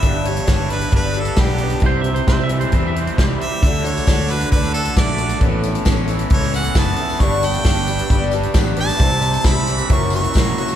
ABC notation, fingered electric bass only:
X:1
M:4/4
L:1/8
Q:1/4=134
K:Glyd
V:1 name="Fingered electric bass" clef=bass
G,,,2 G,,,2 G,,,2 B,,,2 | =C,,2 C,,2 E,,2 C,, z | D,,2 D,,2 D,,2 _B,,,2 | A,,,2 A,,,2 C,,2 F,,, z |
G,,,2 G,,,2 G,,,2 A,,,2 | =C,,2 C,,2 F,,,2 ^A,,, z |]